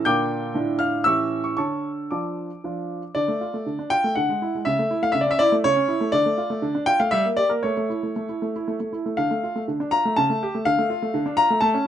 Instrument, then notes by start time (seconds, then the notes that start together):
grand piano
0.05 A#2 D3 D4 F4 G5 D6 G6
0.55 A2 D3 D4 F4
0.79 F5 F6
1.04 A2 E3 C#4 G4 E5 C#6 E6
1.44 C#6
1.57 D3 C#5 A5 C#6
2.11 F3 D4 F4 D5 A5 D6
2.64 F3 D4 F4
3.15 D3 D5
3.28 A3
3.41 F4
3.54 A3
3.66 D3
3.79 D4
3.90 F4 G5
4.04 A3
4.15 D3 F#5
4.29 G#3
4.42 E4
4.55 G#3
4.65 C#3 E5
4.79 A3
4.91 E4
5.02 A3 F5
5.12 C#3 E5
5.21 D5
5.27 C#4
5.31 E5
5.39 E4 D5
5.52 A3
5.64 C#3 C#5
5.76 C#4
5.88 E4
6.01 A3
6.12 D3 D5
6.26 A3
6.38 F4
6.50 A3
6.62 D3
6.75 D4
6.86 F4 G5
7.00 A3 F5
7.11 G3 E5
7.25 A#3
7.37 G4 D5
7.49 A#3 A#4
7.63 A3 C#5
7.77 A3
7.90 E4
8.03 A3
8.16 A3
8.29 E4
8.42 A3
8.56 E4
8.68 A3
8.80 A3
8.93 E4
9.06 A3
9.17 D3 F5
9.31 A3
9.44 F4
9.56 A3
9.68 D3
9.80 D4
9.91 F4 A#5
10.05 A3
10.16 C#3 A5
10.30 A3
10.43 G4
10.55 A3
10.65 D3 F5
10.78 A3
10.90 F4
11.02 A3
11.14 D3
11.26 D4
11.37 F4 A#5
11.50 A3
11.61 A3 A5
11.74 C#4